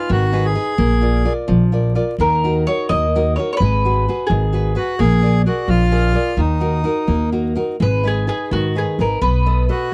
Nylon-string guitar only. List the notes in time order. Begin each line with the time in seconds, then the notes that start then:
Already playing: D#4 G#4 B4
0.09 D#3
0.32 D#4 G#4 B4
0.55 D#4 G#4 B4
0.78 A#3
1.01 F4 A#4 D5
1.25 F4 A#4 D5
1.48 F3
1.72 F4 A#4 D5
1.95 F4 A#4 D5
2.20 D#3
2.44 D#4 F#4 A#4
2.67 D#4 F#4 A#4
2.91 A#3
3.16 D#4 F#4 A#4
3.38 D#4 F#4 A#4
3.62 G#3
3.85 F#4 G#4 B4
4.08 F#4 G#4 B4
4.31 D#3
4.53 F#4 G#4 B4
4.75 F#4 G#4 B4
4.99 A#3
5.22 G#4 A#4 D5
5.46 G#4 A#4 D5
5.68 F3
5.92 G#4 A#4 D5
6.14 G#4 A#4 D5
6.38 D#3
6.60 D#4 F#4 A#4
6.84 D#4 F#4 A#4
7.08 A#3
7.32 D#4 F#4 A#4
7.55 D#4 F#4 A#4
7.80 G#3
8.03 D#4 G#4 B4
8.27 D#4 G#4 B4
8.51 D#3
8.75 D#4 G#4 B4
8.99 D#4 G#4 B4
9.21 B3
9.46 A4 B4 D#5
9.69 A4 B4 D#5